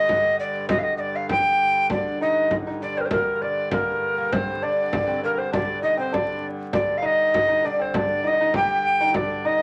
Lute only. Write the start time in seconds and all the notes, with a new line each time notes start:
1.90 D4
2.21 D#4
2.67 D#4
2.82 D4
2.97 C4
3.06 C4
3.12 A#3
3.42 D4
3.72 A#3
4.18 A#3
4.32 C4
4.62 D4
5.07 C4
5.24 A#3
5.38 C4
5.53 D4
5.82 D#4
5.97 C4
6.12 D4
6.73 D4
7.02 D#4
7.49 D#4
7.64 D4
7.79 C4
7.94 D4
8.24 D#4
8.33 D#4
8.41 D#4
8.55 G4
9.01 D#4
9.15 D4
9.45 D#4